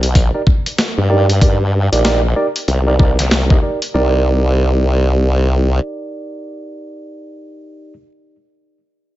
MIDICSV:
0, 0, Header, 1, 4, 480
1, 0, Start_track
1, 0, Key_signature, -3, "minor"
1, 0, Tempo, 631579
1, 1075, Time_signature, 4, 2, 24, 8
1, 6963, End_track
2, 0, Start_track
2, 0, Title_t, "Tine electric piano"
2, 0, Program_c, 0, 4
2, 261, Note_on_c, 0, 67, 73
2, 261, Note_on_c, 0, 70, 73
2, 262, Note_on_c, 0, 63, 82
2, 262, Note_on_c, 0, 74, 83
2, 309, Note_off_c, 0, 63, 0
2, 309, Note_off_c, 0, 67, 0
2, 309, Note_off_c, 0, 70, 0
2, 309, Note_off_c, 0, 74, 0
2, 835, Note_on_c, 0, 63, 84
2, 835, Note_on_c, 0, 67, 80
2, 835, Note_on_c, 0, 70, 72
2, 836, Note_on_c, 0, 74, 93
2, 955, Note_off_c, 0, 63, 0
2, 955, Note_off_c, 0, 67, 0
2, 955, Note_off_c, 0, 70, 0
2, 955, Note_off_c, 0, 74, 0
2, 1076, Note_on_c, 0, 63, 72
2, 1076, Note_on_c, 0, 67, 69
2, 1076, Note_on_c, 0, 70, 71
2, 1076, Note_on_c, 0, 74, 84
2, 1195, Note_off_c, 0, 63, 0
2, 1195, Note_off_c, 0, 67, 0
2, 1195, Note_off_c, 0, 70, 0
2, 1195, Note_off_c, 0, 74, 0
2, 1463, Note_on_c, 0, 63, 72
2, 1463, Note_on_c, 0, 67, 66
2, 1463, Note_on_c, 0, 70, 66
2, 1463, Note_on_c, 0, 74, 77
2, 1539, Note_off_c, 0, 63, 0
2, 1539, Note_off_c, 0, 67, 0
2, 1539, Note_off_c, 0, 70, 0
2, 1539, Note_off_c, 0, 74, 0
2, 1556, Note_on_c, 0, 63, 87
2, 1556, Note_on_c, 0, 67, 76
2, 1556, Note_on_c, 0, 70, 77
2, 1556, Note_on_c, 0, 74, 94
2, 1675, Note_off_c, 0, 63, 0
2, 1675, Note_off_c, 0, 67, 0
2, 1675, Note_off_c, 0, 70, 0
2, 1675, Note_off_c, 0, 74, 0
2, 1795, Note_on_c, 0, 63, 88
2, 1795, Note_on_c, 0, 67, 76
2, 1795, Note_on_c, 0, 70, 78
2, 1795, Note_on_c, 0, 74, 99
2, 1870, Note_off_c, 0, 63, 0
2, 1870, Note_off_c, 0, 67, 0
2, 1870, Note_off_c, 0, 70, 0
2, 1870, Note_off_c, 0, 74, 0
2, 2183, Note_on_c, 0, 63, 82
2, 2183, Note_on_c, 0, 67, 70
2, 2183, Note_on_c, 0, 70, 75
2, 2183, Note_on_c, 0, 74, 84
2, 2230, Note_off_c, 0, 63, 0
2, 2230, Note_off_c, 0, 67, 0
2, 2230, Note_off_c, 0, 70, 0
2, 2230, Note_off_c, 0, 74, 0
2, 2276, Note_on_c, 0, 63, 82
2, 2276, Note_on_c, 0, 67, 80
2, 2276, Note_on_c, 0, 70, 79
2, 2276, Note_on_c, 0, 74, 90
2, 2395, Note_off_c, 0, 63, 0
2, 2395, Note_off_c, 0, 67, 0
2, 2395, Note_off_c, 0, 70, 0
2, 2395, Note_off_c, 0, 74, 0
2, 2662, Note_on_c, 0, 63, 78
2, 2662, Note_on_c, 0, 67, 76
2, 2662, Note_on_c, 0, 70, 77
2, 2662, Note_on_c, 0, 75, 94
2, 2709, Note_off_c, 0, 63, 0
2, 2710, Note_off_c, 0, 67, 0
2, 2710, Note_off_c, 0, 70, 0
2, 2710, Note_off_c, 0, 75, 0
2, 2756, Note_on_c, 0, 63, 69
2, 2756, Note_on_c, 0, 67, 64
2, 2756, Note_on_c, 0, 70, 64
2, 2756, Note_on_c, 0, 74, 75
2, 2875, Note_off_c, 0, 63, 0
2, 2875, Note_off_c, 0, 67, 0
2, 2875, Note_off_c, 0, 70, 0
2, 2875, Note_off_c, 0, 74, 0
2, 2996, Note_on_c, 0, 63, 79
2, 2996, Note_on_c, 0, 67, 69
2, 2996, Note_on_c, 0, 70, 71
2, 2997, Note_on_c, 0, 74, 88
2, 6025, Note_off_c, 0, 63, 0
2, 6025, Note_off_c, 0, 67, 0
2, 6025, Note_off_c, 0, 70, 0
2, 6026, Note_off_c, 0, 74, 0
2, 6963, End_track
3, 0, Start_track
3, 0, Title_t, "Wobble bass"
3, 0, Program_c, 1, 39
3, 0, Note_on_c, 1, 36, 94
3, 35, Note_off_c, 1, 36, 0
3, 35, Note_on_c, 1, 35, 94
3, 238, Note_off_c, 1, 35, 0
3, 742, Note_on_c, 1, 43, 91
3, 1438, Note_off_c, 1, 43, 0
3, 1461, Note_on_c, 1, 34, 92
3, 1780, Note_off_c, 1, 34, 0
3, 2035, Note_on_c, 1, 36, 88
3, 2740, Note_off_c, 1, 36, 0
3, 2997, Note_on_c, 1, 36, 93
3, 4406, Note_off_c, 1, 36, 0
3, 6963, End_track
4, 0, Start_track
4, 0, Title_t, "Drums"
4, 22, Note_on_c, 9, 42, 61
4, 98, Note_off_c, 9, 42, 0
4, 115, Note_on_c, 9, 36, 102
4, 116, Note_on_c, 9, 42, 48
4, 191, Note_off_c, 9, 36, 0
4, 192, Note_off_c, 9, 42, 0
4, 355, Note_on_c, 9, 36, 99
4, 431, Note_off_c, 9, 36, 0
4, 504, Note_on_c, 9, 42, 61
4, 580, Note_off_c, 9, 42, 0
4, 596, Note_on_c, 9, 38, 112
4, 596, Note_on_c, 9, 42, 50
4, 672, Note_off_c, 9, 38, 0
4, 672, Note_off_c, 9, 42, 0
4, 984, Note_on_c, 9, 42, 63
4, 1060, Note_off_c, 9, 42, 0
4, 1075, Note_on_c, 9, 36, 109
4, 1077, Note_on_c, 9, 42, 45
4, 1151, Note_off_c, 9, 36, 0
4, 1153, Note_off_c, 9, 42, 0
4, 1464, Note_on_c, 9, 42, 58
4, 1540, Note_off_c, 9, 42, 0
4, 1557, Note_on_c, 9, 38, 106
4, 1557, Note_on_c, 9, 42, 45
4, 1633, Note_off_c, 9, 38, 0
4, 1633, Note_off_c, 9, 42, 0
4, 1944, Note_on_c, 9, 42, 56
4, 2020, Note_off_c, 9, 42, 0
4, 2037, Note_on_c, 9, 42, 45
4, 2113, Note_off_c, 9, 42, 0
4, 2276, Note_on_c, 9, 36, 99
4, 2352, Note_off_c, 9, 36, 0
4, 2424, Note_on_c, 9, 38, 35
4, 2424, Note_on_c, 9, 42, 57
4, 2500, Note_off_c, 9, 38, 0
4, 2500, Note_off_c, 9, 42, 0
4, 2518, Note_on_c, 9, 38, 114
4, 2518, Note_on_c, 9, 42, 45
4, 2594, Note_off_c, 9, 38, 0
4, 2594, Note_off_c, 9, 42, 0
4, 2663, Note_on_c, 9, 36, 102
4, 2739, Note_off_c, 9, 36, 0
4, 2904, Note_on_c, 9, 42, 54
4, 2980, Note_off_c, 9, 42, 0
4, 6963, End_track
0, 0, End_of_file